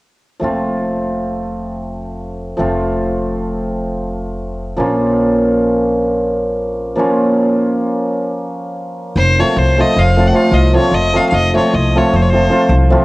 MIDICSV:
0, 0, Header, 1, 4, 480
1, 0, Start_track
1, 0, Tempo, 396825
1, 502, Time_signature, 11, 3, 24, 8
1, 15784, End_track
2, 0, Start_track
2, 0, Title_t, "Violin"
2, 0, Program_c, 0, 40
2, 11097, Note_on_c, 0, 72, 100
2, 11368, Note_on_c, 0, 73, 81
2, 11386, Note_off_c, 0, 72, 0
2, 11597, Note_on_c, 0, 72, 82
2, 11616, Note_off_c, 0, 73, 0
2, 11863, Note_on_c, 0, 75, 89
2, 11881, Note_off_c, 0, 72, 0
2, 12081, Note_on_c, 0, 77, 81
2, 12099, Note_off_c, 0, 75, 0
2, 12422, Note_on_c, 0, 78, 70
2, 12441, Note_off_c, 0, 77, 0
2, 12525, Note_on_c, 0, 77, 87
2, 12543, Note_off_c, 0, 78, 0
2, 12744, Note_on_c, 0, 75, 78
2, 12762, Note_off_c, 0, 77, 0
2, 13006, Note_off_c, 0, 75, 0
2, 13016, Note_on_c, 0, 73, 79
2, 13237, Note_on_c, 0, 75, 90
2, 13255, Note_off_c, 0, 73, 0
2, 13501, Note_on_c, 0, 77, 83
2, 13519, Note_off_c, 0, 75, 0
2, 13650, Note_off_c, 0, 77, 0
2, 13658, Note_on_c, 0, 77, 60
2, 13717, Note_on_c, 0, 75, 92
2, 13735, Note_off_c, 0, 77, 0
2, 13982, Note_off_c, 0, 75, 0
2, 13997, Note_on_c, 0, 73, 64
2, 14206, Note_on_c, 0, 75, 72
2, 14224, Note_off_c, 0, 73, 0
2, 14487, Note_on_c, 0, 73, 62
2, 14505, Note_off_c, 0, 75, 0
2, 14711, Note_on_c, 0, 72, 59
2, 14729, Note_off_c, 0, 73, 0
2, 14782, Note_on_c, 0, 73, 54
2, 14800, Note_off_c, 0, 72, 0
2, 14880, Note_on_c, 0, 72, 82
2, 14898, Note_off_c, 0, 73, 0
2, 15364, Note_off_c, 0, 72, 0
2, 15784, End_track
3, 0, Start_track
3, 0, Title_t, "Hammered dulcimer"
3, 0, Program_c, 1, 15
3, 478, Note_on_c, 1, 53, 57
3, 494, Note_on_c, 1, 57, 49
3, 516, Note_on_c, 1, 60, 53
3, 528, Note_on_c, 1, 65, 66
3, 3093, Note_off_c, 1, 53, 0
3, 3107, Note_on_c, 1, 53, 62
3, 3113, Note_off_c, 1, 57, 0
3, 3118, Note_on_c, 1, 57, 48
3, 3133, Note_off_c, 1, 60, 0
3, 3138, Note_on_c, 1, 60, 61
3, 3141, Note_off_c, 1, 65, 0
3, 3145, Note_on_c, 1, 65, 70
3, 5750, Note_off_c, 1, 53, 0
3, 5765, Note_on_c, 1, 53, 59
3, 5773, Note_on_c, 1, 58, 59
3, 5783, Note_on_c, 1, 61, 54
3, 5797, Note_off_c, 1, 65, 0
3, 5802, Note_on_c, 1, 65, 72
3, 5846, Note_off_c, 1, 57, 0
3, 5855, Note_off_c, 1, 60, 0
3, 8399, Note_off_c, 1, 53, 0
3, 8413, Note_on_c, 1, 53, 60
3, 8417, Note_off_c, 1, 58, 0
3, 8422, Note_on_c, 1, 58, 59
3, 8438, Note_off_c, 1, 61, 0
3, 8443, Note_on_c, 1, 61, 56
3, 8453, Note_off_c, 1, 65, 0
3, 8458, Note_on_c, 1, 65, 68
3, 11138, Note_off_c, 1, 53, 0
3, 11358, Note_on_c, 1, 53, 56
3, 11365, Note_on_c, 1, 57, 50
3, 11371, Note_off_c, 1, 65, 0
3, 11373, Note_on_c, 1, 60, 53
3, 11376, Note_on_c, 1, 65, 59
3, 11438, Note_off_c, 1, 58, 0
3, 11446, Note_off_c, 1, 61, 0
3, 11511, Note_off_c, 1, 57, 0
3, 11515, Note_off_c, 1, 60, 0
3, 11516, Note_off_c, 1, 65, 0
3, 11815, Note_off_c, 1, 53, 0
3, 11829, Note_on_c, 1, 53, 55
3, 11833, Note_on_c, 1, 57, 50
3, 11840, Note_on_c, 1, 60, 44
3, 11849, Note_on_c, 1, 65, 71
3, 11990, Note_off_c, 1, 57, 0
3, 11993, Note_off_c, 1, 60, 0
3, 11998, Note_off_c, 1, 65, 0
3, 12280, Note_off_c, 1, 53, 0
3, 12294, Note_on_c, 1, 53, 59
3, 12296, Note_on_c, 1, 57, 45
3, 12307, Note_on_c, 1, 60, 42
3, 12319, Note_on_c, 1, 65, 59
3, 12450, Note_off_c, 1, 57, 0
3, 12455, Note_off_c, 1, 60, 0
3, 12461, Note_off_c, 1, 65, 0
3, 12475, Note_off_c, 1, 53, 0
3, 12490, Note_on_c, 1, 53, 55
3, 12499, Note_on_c, 1, 57, 53
3, 12510, Note_on_c, 1, 65, 61
3, 12511, Note_on_c, 1, 60, 52
3, 12657, Note_off_c, 1, 57, 0
3, 12663, Note_off_c, 1, 65, 0
3, 12664, Note_off_c, 1, 60, 0
3, 12964, Note_off_c, 1, 53, 0
3, 12978, Note_on_c, 1, 53, 63
3, 12992, Note_on_c, 1, 57, 53
3, 12999, Note_on_c, 1, 60, 46
3, 13006, Note_on_c, 1, 65, 56
3, 13150, Note_off_c, 1, 57, 0
3, 13153, Note_off_c, 1, 60, 0
3, 13157, Note_off_c, 1, 65, 0
3, 13448, Note_off_c, 1, 53, 0
3, 13462, Note_on_c, 1, 53, 56
3, 13470, Note_on_c, 1, 57, 57
3, 13479, Note_on_c, 1, 60, 52
3, 13486, Note_on_c, 1, 65, 63
3, 13634, Note_off_c, 1, 57, 0
3, 13638, Note_off_c, 1, 60, 0
3, 13642, Note_off_c, 1, 65, 0
3, 13943, Note_off_c, 1, 53, 0
3, 13955, Note_on_c, 1, 57, 54
3, 13957, Note_on_c, 1, 53, 62
3, 13974, Note_on_c, 1, 60, 50
3, 13977, Note_on_c, 1, 65, 57
3, 14121, Note_off_c, 1, 57, 0
3, 14130, Note_off_c, 1, 60, 0
3, 14131, Note_off_c, 1, 65, 0
3, 14442, Note_off_c, 1, 53, 0
3, 14457, Note_on_c, 1, 53, 53
3, 14463, Note_on_c, 1, 60, 50
3, 14464, Note_on_c, 1, 57, 59
3, 14478, Note_on_c, 1, 65, 67
3, 14619, Note_off_c, 1, 60, 0
3, 14620, Note_off_c, 1, 57, 0
3, 14627, Note_off_c, 1, 65, 0
3, 14896, Note_off_c, 1, 53, 0
3, 14911, Note_on_c, 1, 53, 57
3, 14921, Note_on_c, 1, 57, 50
3, 14924, Note_on_c, 1, 60, 45
3, 14940, Note_on_c, 1, 65, 58
3, 15076, Note_off_c, 1, 57, 0
3, 15077, Note_off_c, 1, 60, 0
3, 15086, Note_off_c, 1, 65, 0
3, 15101, Note_off_c, 1, 53, 0
3, 15115, Note_on_c, 1, 53, 60
3, 15119, Note_on_c, 1, 57, 51
3, 15126, Note_on_c, 1, 60, 47
3, 15144, Note_on_c, 1, 65, 74
3, 15281, Note_off_c, 1, 57, 0
3, 15285, Note_off_c, 1, 60, 0
3, 15294, Note_off_c, 1, 65, 0
3, 15592, Note_off_c, 1, 53, 0
3, 15606, Note_on_c, 1, 53, 68
3, 15606, Note_on_c, 1, 57, 59
3, 15613, Note_on_c, 1, 60, 57
3, 15629, Note_on_c, 1, 65, 82
3, 15770, Note_off_c, 1, 57, 0
3, 15774, Note_off_c, 1, 60, 0
3, 15782, Note_off_c, 1, 65, 0
3, 15784, Note_off_c, 1, 53, 0
3, 15784, End_track
4, 0, Start_track
4, 0, Title_t, "Upright bass"
4, 0, Program_c, 2, 32
4, 506, Note_on_c, 2, 29, 53
4, 3100, Note_off_c, 2, 29, 0
4, 3132, Note_on_c, 2, 29, 55
4, 5736, Note_off_c, 2, 29, 0
4, 5778, Note_on_c, 2, 34, 58
4, 8381, Note_off_c, 2, 34, 0
4, 11076, Note_on_c, 2, 29, 82
4, 11370, Note_off_c, 2, 29, 0
4, 11567, Note_on_c, 2, 36, 78
4, 11861, Note_off_c, 2, 36, 0
4, 12051, Note_on_c, 2, 29, 82
4, 12456, Note_off_c, 2, 29, 0
4, 12718, Note_on_c, 2, 36, 83
4, 13015, Note_off_c, 2, 36, 0
4, 13202, Note_on_c, 2, 29, 68
4, 13501, Note_off_c, 2, 29, 0
4, 13696, Note_on_c, 2, 29, 81
4, 13993, Note_off_c, 2, 29, 0
4, 14195, Note_on_c, 2, 36, 74
4, 14489, Note_off_c, 2, 36, 0
4, 14678, Note_on_c, 2, 29, 81
4, 15083, Note_off_c, 2, 29, 0
4, 15352, Note_on_c, 2, 36, 86
4, 15647, Note_off_c, 2, 36, 0
4, 15784, End_track
0, 0, End_of_file